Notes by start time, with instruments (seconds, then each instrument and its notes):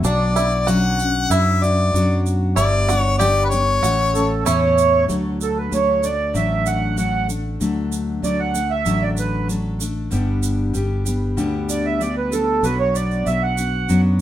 0.03 fingered electric bass B1, steel-string acoustic guitar B2 F#3 D4 F#4, five-string banjo D4, harmonica D5, shaker
0.35 steel-string acoustic guitar D4 F#4, five-string banjo E4, shaker
0.67 steel-string acoustic guitar B2 F#3 C#4 D4 F#4, five-string banjo F#4, harmonica F#5, shaker
0.98 steel-string acoustic guitar C#4 D4 F#4, shaker
1.30 fingered electric bass F#2, steel-string acoustic guitar F#3 C#4 D4 F#4, five-string banjo E4, harmonica E5, shaker
1.62 steel-string acoustic guitar D4 F#4, harmonica D5, shaker
1.93 fingered electric bass F#2, steel-string acoustic guitar B2 F#3 D4 F#4, shaker
2.26 shaker
2.56 fingered electric bass G1, steel-string acoustic guitar G2 D3 G3 B3 D4 G4, five-string banjo E4, harmonica D5, shaker
2.88 steel-string acoustic guitar G3 B3 D4 G4, five-string banjo F#4, shaker
2.98 harmonica C#5
3.18 steel-string acoustic guitar G2 D3 G3 B3 D4 G4, five-string banjo G4, harmonica D5, shaker
3.44 harmonica B4
3.49 steel-string acoustic guitar D4 G4, harmonica C#5, shaker
3.53 steel-string acoustic guitar G3 B3
3.82 fingered electric bass A1, steel-string acoustic guitar A3 C#4 E4 A4, five-string banjo F#4, shaker
4.14 steel-string acoustic guitar A3 C#4 E4 A4, accordion A4, shaker
4.45 fingered electric bass E2, steel-string acoustic guitar A2 E3 A3 C#4 E4 A4, five-string banjo E4, accordion C#5, shaker
4.78 shaker
5.08 fingered electric bass D2, steel-string acoustic guitar D3 F#3 A3 D4 A4, shaker
5.41 accordion A4, shaker
5.58 accordion B4
5.71 fingered electric bass D2, steel-string acoustic guitar F#3 A3 D4 A4, accordion C#5, shaker
6.02 steel-string acoustic guitar A3 D4 A4, accordion D5, shaker
6.33 fingered electric bass A1, steel-string acoustic guitar D3 F#3 A3 D4 A4, accordion E5, shaker
6.66 accordion F#5, shaker
6.97 steel-string acoustic guitar F#3 A3 D4 A4, accordion F#5, shaker
7.28 steel-string acoustic guitar A3 D4 A4, shaker
7.60 fingered electric bass D2, steel-string acoustic guitar D3 F#3 A3 D4 A4, shaker
7.92 shaker
8.22 fingered electric bass D2, steel-string acoustic guitar F#3 A3 D4 A4, accordion D5, shaker
8.39 accordion F#5
8.53 steel-string acoustic guitar A3 D4 A4, shaker
8.71 accordion E5
8.85 fingered electric bass A1, steel-string acoustic guitar D3 F#3 A3 D4 A4, shaker
9.02 accordion D5
9.17 accordion B4, shaker
9.47 steel-string acoustic guitar F#3 A3 D4 A4, shaker
9.79 steel-string acoustic guitar A3 D4 A4, shaker
10.10 fingered electric bass G1, steel-string acoustic guitar G2 D3 G3 B3 D4 G4, shaker
10.43 shaker
10.73 fingered electric bass G1, steel-string acoustic guitar G3 B3 D4 G4, shaker
11.05 steel-string acoustic guitar G3 B3 D4 G4, shaker
11.37 fingered electric bass D2, steel-string acoustic guitar G2 D3 G3 B3 D4 G4, shaker
11.69 accordion D5, shaker
11.86 accordion E5
12.00 steel-string acoustic guitar G3 B3 D4 G4, accordion D5, shaker
12.17 accordion B4
12.31 steel-string acoustic guitar G3 B3 D4 G4, accordion A4, shaker
12.63 fingered electric bass B1, steel-string acoustic guitar B2 F#3 B3 D4 F#4, accordion B4, shaker
12.79 accordion C#5
12.95 accordion D5, shaker
13.11 shaker
13.25 fingered electric bass B1, steel-string acoustic guitar F#3 B3 D4 F#4, accordion E5, shaker
13.43 accordion F#5
13.56 steel-string acoustic guitar B3 D4 F#4, shaker
13.88 fingered electric bass F#2, steel-string acoustic guitar B2 F#3 B3 D4 F#4, shaker